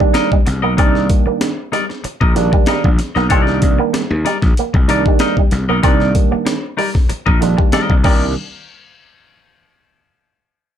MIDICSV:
0, 0, Header, 1, 8, 480
1, 0, Start_track
1, 0, Key_signature, -3, "minor"
1, 0, Tempo, 631579
1, 594, Time_signature, 4, 2, 24, 8
1, 8192, End_track
2, 0, Start_track
2, 0, Title_t, "Clean electric guitar"
2, 0, Program_c, 0, 27
2, 105, Note_on_c, 0, 63, 85
2, 110, Note_on_c, 0, 70, 95
2, 114, Note_on_c, 0, 75, 91
2, 223, Note_off_c, 0, 63, 0
2, 225, Note_off_c, 0, 70, 0
2, 227, Note_off_c, 0, 75, 0
2, 474, Note_on_c, 0, 75, 62
2, 478, Note_on_c, 0, 70, 58
2, 482, Note_on_c, 0, 63, 53
2, 556, Note_off_c, 0, 75, 0
2, 558, Note_off_c, 0, 70, 0
2, 560, Note_off_c, 0, 63, 0
2, 586, Note_on_c, 0, 63, 83
2, 592, Note_on_c, 0, 70, 75
2, 598, Note_on_c, 0, 74, 91
2, 812, Note_off_c, 0, 63, 0
2, 815, Note_off_c, 0, 70, 0
2, 818, Note_off_c, 0, 74, 0
2, 1309, Note_on_c, 0, 63, 63
2, 1315, Note_on_c, 0, 70, 64
2, 1318, Note_on_c, 0, 74, 58
2, 1400, Note_off_c, 0, 63, 0
2, 1403, Note_off_c, 0, 70, 0
2, 1405, Note_off_c, 0, 74, 0
2, 1677, Note_on_c, 0, 75, 74
2, 1682, Note_on_c, 0, 70, 60
2, 1685, Note_on_c, 0, 63, 56
2, 1780, Note_off_c, 0, 75, 0
2, 1781, Note_off_c, 0, 63, 0
2, 1782, Note_off_c, 0, 70, 0
2, 2030, Note_on_c, 0, 63, 86
2, 2038, Note_on_c, 0, 70, 81
2, 2040, Note_on_c, 0, 75, 85
2, 2145, Note_off_c, 0, 63, 0
2, 2149, Note_off_c, 0, 70, 0
2, 2150, Note_off_c, 0, 75, 0
2, 2394, Note_on_c, 0, 75, 67
2, 2402, Note_on_c, 0, 70, 58
2, 2404, Note_on_c, 0, 63, 54
2, 2476, Note_off_c, 0, 75, 0
2, 2480, Note_off_c, 0, 70, 0
2, 2481, Note_off_c, 0, 63, 0
2, 2502, Note_on_c, 0, 62, 86
2, 2507, Note_on_c, 0, 69, 91
2, 2511, Note_on_c, 0, 73, 94
2, 2599, Note_off_c, 0, 69, 0
2, 2599, Note_on_c, 0, 70, 91
2, 2601, Note_off_c, 0, 62, 0
2, 2601, Note_on_c, 0, 63, 86
2, 2602, Note_off_c, 0, 73, 0
2, 2602, Note_on_c, 0, 74, 94
2, 2730, Note_off_c, 0, 63, 0
2, 2733, Note_off_c, 0, 70, 0
2, 2735, Note_off_c, 0, 74, 0
2, 3228, Note_on_c, 0, 63, 64
2, 3234, Note_on_c, 0, 70, 63
2, 3238, Note_on_c, 0, 74, 63
2, 3320, Note_off_c, 0, 63, 0
2, 3322, Note_off_c, 0, 70, 0
2, 3324, Note_off_c, 0, 74, 0
2, 3714, Note_on_c, 0, 63, 77
2, 3721, Note_on_c, 0, 70, 91
2, 3725, Note_on_c, 0, 74, 93
2, 3827, Note_off_c, 0, 63, 0
2, 3831, Note_off_c, 0, 70, 0
2, 3833, Note_off_c, 0, 74, 0
2, 3952, Note_on_c, 0, 63, 80
2, 3956, Note_on_c, 0, 70, 94
2, 3960, Note_on_c, 0, 75, 84
2, 4066, Note_off_c, 0, 63, 0
2, 4068, Note_off_c, 0, 70, 0
2, 4070, Note_off_c, 0, 75, 0
2, 4323, Note_on_c, 0, 75, 69
2, 4326, Note_on_c, 0, 70, 60
2, 4331, Note_on_c, 0, 63, 54
2, 4401, Note_off_c, 0, 75, 0
2, 4402, Note_off_c, 0, 70, 0
2, 4404, Note_off_c, 0, 63, 0
2, 4430, Note_on_c, 0, 63, 91
2, 4433, Note_on_c, 0, 70, 105
2, 4439, Note_on_c, 0, 74, 103
2, 4654, Note_off_c, 0, 63, 0
2, 4655, Note_off_c, 0, 70, 0
2, 4658, Note_off_c, 0, 74, 0
2, 5147, Note_on_c, 0, 63, 62
2, 5151, Note_on_c, 0, 70, 70
2, 5156, Note_on_c, 0, 74, 69
2, 5239, Note_off_c, 0, 63, 0
2, 5241, Note_off_c, 0, 70, 0
2, 5243, Note_off_c, 0, 74, 0
2, 5516, Note_on_c, 0, 75, 79
2, 5519, Note_on_c, 0, 70, 87
2, 5524, Note_on_c, 0, 63, 64
2, 5619, Note_off_c, 0, 75, 0
2, 5620, Note_off_c, 0, 70, 0
2, 5623, Note_off_c, 0, 63, 0
2, 5872, Note_on_c, 0, 63, 74
2, 5876, Note_on_c, 0, 70, 88
2, 5881, Note_on_c, 0, 75, 94
2, 6030, Note_off_c, 0, 63, 0
2, 6032, Note_off_c, 0, 70, 0
2, 6035, Note_off_c, 0, 75, 0
2, 6107, Note_on_c, 0, 63, 70
2, 6114, Note_on_c, 0, 70, 76
2, 6119, Note_on_c, 0, 74, 80
2, 6260, Note_off_c, 0, 63, 0
2, 6264, Note_off_c, 0, 70, 0
2, 6266, Note_off_c, 0, 74, 0
2, 8192, End_track
3, 0, Start_track
3, 0, Title_t, "Tine electric piano"
3, 0, Program_c, 1, 4
3, 0, Note_on_c, 1, 51, 88
3, 0, Note_on_c, 1, 55, 85
3, 0, Note_on_c, 1, 58, 79
3, 0, Note_on_c, 1, 62, 106
3, 271, Note_off_c, 1, 51, 0
3, 275, Note_off_c, 1, 55, 0
3, 276, Note_off_c, 1, 58, 0
3, 279, Note_off_c, 1, 62, 0
3, 583, Note_on_c, 1, 51, 92
3, 589, Note_on_c, 1, 55, 68
3, 594, Note_on_c, 1, 58, 82
3, 599, Note_on_c, 1, 62, 88
3, 1119, Note_off_c, 1, 51, 0
3, 1122, Note_off_c, 1, 55, 0
3, 1124, Note_off_c, 1, 58, 0
3, 1127, Note_off_c, 1, 62, 0
3, 1786, Note_on_c, 1, 51, 82
3, 1794, Note_on_c, 1, 55, 76
3, 1797, Note_on_c, 1, 58, 78
3, 1802, Note_on_c, 1, 62, 99
3, 2191, Note_off_c, 1, 51, 0
3, 2195, Note_off_c, 1, 55, 0
3, 2196, Note_off_c, 1, 58, 0
3, 2199, Note_off_c, 1, 62, 0
3, 2510, Note_on_c, 1, 51, 89
3, 2513, Note_on_c, 1, 55, 77
3, 2518, Note_on_c, 1, 58, 79
3, 2524, Note_on_c, 1, 62, 94
3, 3042, Note_off_c, 1, 51, 0
3, 3044, Note_off_c, 1, 55, 0
3, 3047, Note_off_c, 1, 58, 0
3, 3049, Note_off_c, 1, 62, 0
3, 3707, Note_on_c, 1, 51, 91
3, 3712, Note_on_c, 1, 55, 82
3, 3715, Note_on_c, 1, 58, 82
3, 3719, Note_on_c, 1, 62, 99
3, 4111, Note_off_c, 1, 51, 0
3, 4114, Note_off_c, 1, 55, 0
3, 4115, Note_off_c, 1, 58, 0
3, 4117, Note_off_c, 1, 62, 0
3, 4433, Note_on_c, 1, 51, 87
3, 4436, Note_on_c, 1, 55, 78
3, 4442, Note_on_c, 1, 58, 78
3, 4448, Note_on_c, 1, 62, 88
3, 4964, Note_off_c, 1, 51, 0
3, 4965, Note_off_c, 1, 55, 0
3, 4968, Note_off_c, 1, 58, 0
3, 4971, Note_off_c, 1, 62, 0
3, 5626, Note_on_c, 1, 51, 86
3, 5633, Note_on_c, 1, 55, 73
3, 5638, Note_on_c, 1, 58, 74
3, 5641, Note_on_c, 1, 62, 89
3, 6030, Note_off_c, 1, 51, 0
3, 6034, Note_off_c, 1, 55, 0
3, 6036, Note_off_c, 1, 58, 0
3, 6038, Note_off_c, 1, 62, 0
3, 6114, Note_on_c, 1, 58, 70
3, 6115, Note_on_c, 1, 51, 75
3, 6115, Note_on_c, 1, 55, 75
3, 6115, Note_on_c, 1, 62, 90
3, 6337, Note_off_c, 1, 51, 0
3, 6337, Note_off_c, 1, 55, 0
3, 6337, Note_off_c, 1, 58, 0
3, 6337, Note_off_c, 1, 62, 0
3, 8192, End_track
4, 0, Start_track
4, 0, Title_t, "Clean electric guitar"
4, 0, Program_c, 2, 27
4, 1, Note_on_c, 2, 55, 66
4, 94, Note_off_c, 2, 55, 0
4, 244, Note_on_c, 2, 55, 67
4, 336, Note_off_c, 2, 55, 0
4, 481, Note_on_c, 2, 58, 81
4, 575, Note_off_c, 2, 58, 0
4, 604, Note_on_c, 2, 60, 79
4, 705, Note_off_c, 2, 60, 0
4, 964, Note_on_c, 2, 58, 83
4, 1057, Note_off_c, 2, 58, 0
4, 1313, Note_on_c, 2, 55, 72
4, 1419, Note_off_c, 2, 55, 0
4, 1794, Note_on_c, 2, 53, 73
4, 1899, Note_off_c, 2, 53, 0
4, 1927, Note_on_c, 2, 55, 69
4, 2019, Note_off_c, 2, 55, 0
4, 2047, Note_on_c, 2, 55, 81
4, 2147, Note_off_c, 2, 55, 0
4, 2405, Note_on_c, 2, 58, 71
4, 2497, Note_off_c, 2, 58, 0
4, 2518, Note_on_c, 2, 60, 84
4, 2622, Note_off_c, 2, 60, 0
4, 2882, Note_on_c, 2, 58, 85
4, 2975, Note_off_c, 2, 58, 0
4, 3239, Note_on_c, 2, 55, 78
4, 3343, Note_off_c, 2, 55, 0
4, 3489, Note_on_c, 2, 58, 79
4, 3588, Note_off_c, 2, 58, 0
4, 3857, Note_on_c, 2, 55, 65
4, 3944, Note_off_c, 2, 55, 0
4, 4092, Note_on_c, 2, 55, 62
4, 4181, Note_off_c, 2, 55, 0
4, 4326, Note_on_c, 2, 58, 84
4, 4418, Note_off_c, 2, 58, 0
4, 4436, Note_on_c, 2, 60, 91
4, 4541, Note_off_c, 2, 60, 0
4, 4798, Note_on_c, 2, 58, 82
4, 4893, Note_off_c, 2, 58, 0
4, 5156, Note_on_c, 2, 55, 76
4, 5261, Note_off_c, 2, 55, 0
4, 5638, Note_on_c, 2, 53, 80
4, 5742, Note_off_c, 2, 53, 0
4, 5760, Note_on_c, 2, 55, 69
4, 5854, Note_off_c, 2, 55, 0
4, 5883, Note_on_c, 2, 55, 79
4, 5985, Note_off_c, 2, 55, 0
4, 6112, Note_on_c, 2, 60, 74
4, 6257, Note_off_c, 2, 60, 0
4, 8192, End_track
5, 0, Start_track
5, 0, Title_t, "Slap bass"
5, 0, Program_c, 3, 36
5, 358, Note_on_c, 3, 36, 78
5, 480, Note_off_c, 3, 36, 0
5, 480, Note_on_c, 3, 35, 86
5, 597, Note_off_c, 3, 35, 0
5, 597, Note_on_c, 3, 36, 98
5, 810, Note_off_c, 3, 36, 0
5, 1682, Note_on_c, 3, 34, 93
5, 1897, Note_off_c, 3, 34, 0
5, 2161, Note_on_c, 3, 34, 78
5, 2262, Note_off_c, 3, 34, 0
5, 2399, Note_on_c, 3, 35, 79
5, 2514, Note_off_c, 3, 35, 0
5, 2514, Note_on_c, 3, 36, 106
5, 2728, Note_off_c, 3, 36, 0
5, 2755, Note_on_c, 3, 36, 93
5, 2868, Note_off_c, 3, 36, 0
5, 3120, Note_on_c, 3, 39, 110
5, 3221, Note_off_c, 3, 39, 0
5, 3361, Note_on_c, 3, 34, 85
5, 3462, Note_off_c, 3, 34, 0
5, 3603, Note_on_c, 3, 36, 88
5, 3817, Note_off_c, 3, 36, 0
5, 4195, Note_on_c, 3, 36, 92
5, 4308, Note_off_c, 3, 36, 0
5, 4327, Note_on_c, 3, 35, 74
5, 4425, Note_off_c, 3, 35, 0
5, 4436, Note_on_c, 3, 36, 106
5, 4650, Note_off_c, 3, 36, 0
5, 5526, Note_on_c, 3, 34, 90
5, 5738, Note_off_c, 3, 34, 0
5, 6003, Note_on_c, 3, 36, 72
5, 6103, Note_off_c, 3, 36, 0
5, 6114, Note_on_c, 3, 36, 83
5, 6337, Note_off_c, 3, 36, 0
5, 8192, End_track
6, 0, Start_track
6, 0, Title_t, "Muted clean electric guitar strokes"
6, 4, Note_on_c, 9, 29, 44
6, 80, Note_off_c, 9, 29, 0
6, 349, Note_on_c, 9, 29, 35
6, 425, Note_off_c, 9, 29, 0
6, 836, Note_on_c, 9, 29, 48
6, 912, Note_off_c, 9, 29, 0
6, 956, Note_on_c, 9, 29, 40
6, 1032, Note_off_c, 9, 29, 0
6, 1073, Note_on_c, 9, 29, 42
6, 1149, Note_off_c, 9, 29, 0
6, 1440, Note_on_c, 9, 29, 43
6, 1516, Note_off_c, 9, 29, 0
6, 1549, Note_on_c, 9, 29, 47
6, 1625, Note_off_c, 9, 29, 0
6, 1790, Note_on_c, 9, 29, 40
6, 1866, Note_off_c, 9, 29, 0
6, 1914, Note_on_c, 9, 29, 41
6, 1990, Note_off_c, 9, 29, 0
6, 2170, Note_on_c, 9, 29, 42
6, 2246, Note_off_c, 9, 29, 0
6, 2270, Note_on_c, 9, 29, 42
6, 2346, Note_off_c, 9, 29, 0
6, 2765, Note_on_c, 9, 29, 48
6, 2841, Note_off_c, 9, 29, 0
6, 2877, Note_on_c, 9, 29, 58
6, 2953, Note_off_c, 9, 29, 0
6, 2991, Note_on_c, 9, 29, 44
6, 3067, Note_off_c, 9, 29, 0
6, 3356, Note_on_c, 9, 29, 53
6, 3432, Note_off_c, 9, 29, 0
6, 3600, Note_on_c, 9, 29, 51
6, 3676, Note_off_c, 9, 29, 0
6, 3840, Note_on_c, 9, 29, 47
6, 3916, Note_off_c, 9, 29, 0
6, 4197, Note_on_c, 9, 29, 34
6, 4273, Note_off_c, 9, 29, 0
6, 4677, Note_on_c, 9, 29, 47
6, 4753, Note_off_c, 9, 29, 0
6, 4804, Note_on_c, 9, 29, 43
6, 4880, Note_off_c, 9, 29, 0
6, 4907, Note_on_c, 9, 29, 41
6, 4983, Note_off_c, 9, 29, 0
6, 5274, Note_on_c, 9, 29, 45
6, 5350, Note_off_c, 9, 29, 0
6, 5390, Note_on_c, 9, 29, 49
6, 5466, Note_off_c, 9, 29, 0
6, 5631, Note_on_c, 9, 29, 41
6, 5707, Note_off_c, 9, 29, 0
6, 5753, Note_on_c, 9, 29, 46
6, 5829, Note_off_c, 9, 29, 0
6, 6002, Note_on_c, 9, 29, 44
6, 6078, Note_off_c, 9, 29, 0
6, 8192, End_track
7, 0, Start_track
7, 0, Title_t, "Muted slap bass strokes"
7, 960, Note_on_c, 9, 29, 54
7, 1036, Note_off_c, 9, 29, 0
7, 1554, Note_on_c, 9, 29, 47
7, 1630, Note_off_c, 9, 29, 0
7, 2034, Note_on_c, 9, 29, 49
7, 2110, Note_off_c, 9, 29, 0
7, 3477, Note_on_c, 9, 29, 49
7, 3553, Note_off_c, 9, 29, 0
7, 4813, Note_on_c, 9, 29, 53
7, 4889, Note_off_c, 9, 29, 0
7, 5398, Note_on_c, 9, 29, 47
7, 5474, Note_off_c, 9, 29, 0
7, 5876, Note_on_c, 9, 29, 42
7, 5952, Note_off_c, 9, 29, 0
7, 8192, End_track
8, 0, Start_track
8, 0, Title_t, "Drums"
8, 3, Note_on_c, 9, 36, 87
8, 79, Note_off_c, 9, 36, 0
8, 108, Note_on_c, 9, 42, 85
8, 114, Note_on_c, 9, 38, 117
8, 184, Note_off_c, 9, 42, 0
8, 190, Note_off_c, 9, 38, 0
8, 241, Note_on_c, 9, 36, 98
8, 317, Note_off_c, 9, 36, 0
8, 354, Note_on_c, 9, 42, 79
8, 357, Note_on_c, 9, 38, 44
8, 430, Note_off_c, 9, 42, 0
8, 433, Note_off_c, 9, 38, 0
8, 594, Note_on_c, 9, 36, 109
8, 595, Note_on_c, 9, 42, 79
8, 670, Note_off_c, 9, 36, 0
8, 671, Note_off_c, 9, 42, 0
8, 725, Note_on_c, 9, 38, 42
8, 801, Note_off_c, 9, 38, 0
8, 832, Note_on_c, 9, 42, 75
8, 834, Note_on_c, 9, 36, 91
8, 908, Note_off_c, 9, 42, 0
8, 910, Note_off_c, 9, 36, 0
8, 1072, Note_on_c, 9, 38, 105
8, 1073, Note_on_c, 9, 42, 99
8, 1148, Note_off_c, 9, 38, 0
8, 1149, Note_off_c, 9, 42, 0
8, 1317, Note_on_c, 9, 38, 32
8, 1317, Note_on_c, 9, 42, 65
8, 1393, Note_off_c, 9, 38, 0
8, 1393, Note_off_c, 9, 42, 0
8, 1444, Note_on_c, 9, 38, 39
8, 1520, Note_off_c, 9, 38, 0
8, 1553, Note_on_c, 9, 42, 71
8, 1629, Note_off_c, 9, 42, 0
8, 1681, Note_on_c, 9, 36, 95
8, 1757, Note_off_c, 9, 36, 0
8, 1794, Note_on_c, 9, 42, 83
8, 1795, Note_on_c, 9, 38, 41
8, 1870, Note_off_c, 9, 42, 0
8, 1871, Note_off_c, 9, 38, 0
8, 1922, Note_on_c, 9, 36, 93
8, 1998, Note_off_c, 9, 36, 0
8, 2023, Note_on_c, 9, 42, 93
8, 2030, Note_on_c, 9, 38, 115
8, 2099, Note_off_c, 9, 42, 0
8, 2106, Note_off_c, 9, 38, 0
8, 2161, Note_on_c, 9, 36, 98
8, 2237, Note_off_c, 9, 36, 0
8, 2269, Note_on_c, 9, 42, 74
8, 2273, Note_on_c, 9, 38, 37
8, 2345, Note_off_c, 9, 42, 0
8, 2349, Note_off_c, 9, 38, 0
8, 2399, Note_on_c, 9, 38, 35
8, 2475, Note_off_c, 9, 38, 0
8, 2508, Note_on_c, 9, 42, 80
8, 2512, Note_on_c, 9, 36, 93
8, 2584, Note_off_c, 9, 42, 0
8, 2588, Note_off_c, 9, 36, 0
8, 2638, Note_on_c, 9, 38, 46
8, 2714, Note_off_c, 9, 38, 0
8, 2750, Note_on_c, 9, 42, 80
8, 2753, Note_on_c, 9, 36, 83
8, 2826, Note_off_c, 9, 42, 0
8, 2829, Note_off_c, 9, 36, 0
8, 2994, Note_on_c, 9, 38, 105
8, 2996, Note_on_c, 9, 42, 92
8, 3070, Note_off_c, 9, 38, 0
8, 3072, Note_off_c, 9, 42, 0
8, 3235, Note_on_c, 9, 42, 75
8, 3236, Note_on_c, 9, 38, 32
8, 3311, Note_off_c, 9, 42, 0
8, 3312, Note_off_c, 9, 38, 0
8, 3362, Note_on_c, 9, 36, 94
8, 3363, Note_on_c, 9, 38, 37
8, 3438, Note_off_c, 9, 36, 0
8, 3439, Note_off_c, 9, 38, 0
8, 3476, Note_on_c, 9, 42, 76
8, 3552, Note_off_c, 9, 42, 0
8, 3602, Note_on_c, 9, 36, 88
8, 3678, Note_off_c, 9, 36, 0
8, 3715, Note_on_c, 9, 42, 83
8, 3716, Note_on_c, 9, 38, 41
8, 3791, Note_off_c, 9, 42, 0
8, 3792, Note_off_c, 9, 38, 0
8, 3843, Note_on_c, 9, 36, 87
8, 3919, Note_off_c, 9, 36, 0
8, 3945, Note_on_c, 9, 42, 79
8, 3951, Note_on_c, 9, 38, 110
8, 4021, Note_off_c, 9, 42, 0
8, 4027, Note_off_c, 9, 38, 0
8, 4081, Note_on_c, 9, 36, 90
8, 4157, Note_off_c, 9, 36, 0
8, 4189, Note_on_c, 9, 42, 72
8, 4193, Note_on_c, 9, 38, 39
8, 4265, Note_off_c, 9, 42, 0
8, 4269, Note_off_c, 9, 38, 0
8, 4434, Note_on_c, 9, 42, 86
8, 4435, Note_on_c, 9, 36, 107
8, 4510, Note_off_c, 9, 42, 0
8, 4511, Note_off_c, 9, 36, 0
8, 4562, Note_on_c, 9, 38, 39
8, 4638, Note_off_c, 9, 38, 0
8, 4673, Note_on_c, 9, 42, 72
8, 4675, Note_on_c, 9, 36, 88
8, 4749, Note_off_c, 9, 42, 0
8, 4751, Note_off_c, 9, 36, 0
8, 4914, Note_on_c, 9, 38, 104
8, 4915, Note_on_c, 9, 42, 89
8, 4990, Note_off_c, 9, 38, 0
8, 4991, Note_off_c, 9, 42, 0
8, 5157, Note_on_c, 9, 46, 57
8, 5233, Note_off_c, 9, 46, 0
8, 5280, Note_on_c, 9, 38, 34
8, 5282, Note_on_c, 9, 36, 83
8, 5356, Note_off_c, 9, 38, 0
8, 5358, Note_off_c, 9, 36, 0
8, 5393, Note_on_c, 9, 42, 78
8, 5469, Note_off_c, 9, 42, 0
8, 5523, Note_on_c, 9, 36, 90
8, 5599, Note_off_c, 9, 36, 0
8, 5639, Note_on_c, 9, 42, 87
8, 5640, Note_on_c, 9, 38, 41
8, 5715, Note_off_c, 9, 42, 0
8, 5716, Note_off_c, 9, 38, 0
8, 5765, Note_on_c, 9, 36, 86
8, 5841, Note_off_c, 9, 36, 0
8, 5869, Note_on_c, 9, 42, 94
8, 5875, Note_on_c, 9, 38, 112
8, 5945, Note_off_c, 9, 42, 0
8, 5951, Note_off_c, 9, 38, 0
8, 6002, Note_on_c, 9, 36, 92
8, 6078, Note_off_c, 9, 36, 0
8, 6111, Note_on_c, 9, 49, 81
8, 6114, Note_on_c, 9, 36, 107
8, 6187, Note_off_c, 9, 49, 0
8, 6190, Note_off_c, 9, 36, 0
8, 8192, End_track
0, 0, End_of_file